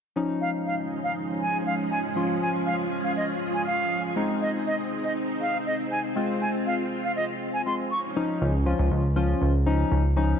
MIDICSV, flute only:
0, 0, Header, 1, 2, 480
1, 0, Start_track
1, 0, Tempo, 500000
1, 157, Time_signature, 4, 2, 24, 8
1, 9980, End_track
2, 0, Start_track
2, 0, Title_t, "Flute"
2, 0, Program_c, 0, 73
2, 396, Note_on_c, 0, 77, 73
2, 475, Note_off_c, 0, 77, 0
2, 636, Note_on_c, 0, 77, 74
2, 715, Note_off_c, 0, 77, 0
2, 996, Note_on_c, 0, 77, 71
2, 1075, Note_off_c, 0, 77, 0
2, 1357, Note_on_c, 0, 80, 71
2, 1514, Note_off_c, 0, 80, 0
2, 1596, Note_on_c, 0, 77, 71
2, 1675, Note_off_c, 0, 77, 0
2, 1834, Note_on_c, 0, 80, 68
2, 1913, Note_off_c, 0, 80, 0
2, 2317, Note_on_c, 0, 80, 61
2, 2395, Note_off_c, 0, 80, 0
2, 2556, Note_on_c, 0, 77, 71
2, 2635, Note_off_c, 0, 77, 0
2, 2917, Note_on_c, 0, 77, 64
2, 2995, Note_off_c, 0, 77, 0
2, 3038, Note_on_c, 0, 75, 75
2, 3117, Note_off_c, 0, 75, 0
2, 3398, Note_on_c, 0, 80, 65
2, 3476, Note_off_c, 0, 80, 0
2, 3516, Note_on_c, 0, 77, 74
2, 3855, Note_off_c, 0, 77, 0
2, 4237, Note_on_c, 0, 75, 74
2, 4316, Note_off_c, 0, 75, 0
2, 4479, Note_on_c, 0, 75, 75
2, 4557, Note_off_c, 0, 75, 0
2, 4837, Note_on_c, 0, 75, 71
2, 4916, Note_off_c, 0, 75, 0
2, 5195, Note_on_c, 0, 77, 73
2, 5353, Note_off_c, 0, 77, 0
2, 5435, Note_on_c, 0, 75, 83
2, 5514, Note_off_c, 0, 75, 0
2, 5676, Note_on_c, 0, 80, 74
2, 5755, Note_off_c, 0, 80, 0
2, 6158, Note_on_c, 0, 80, 72
2, 6236, Note_off_c, 0, 80, 0
2, 6398, Note_on_c, 0, 77, 81
2, 6476, Note_off_c, 0, 77, 0
2, 6758, Note_on_c, 0, 77, 74
2, 6836, Note_off_c, 0, 77, 0
2, 6875, Note_on_c, 0, 75, 86
2, 6954, Note_off_c, 0, 75, 0
2, 7235, Note_on_c, 0, 80, 75
2, 7314, Note_off_c, 0, 80, 0
2, 7353, Note_on_c, 0, 84, 80
2, 7433, Note_off_c, 0, 84, 0
2, 7596, Note_on_c, 0, 85, 72
2, 7675, Note_off_c, 0, 85, 0
2, 9980, End_track
0, 0, End_of_file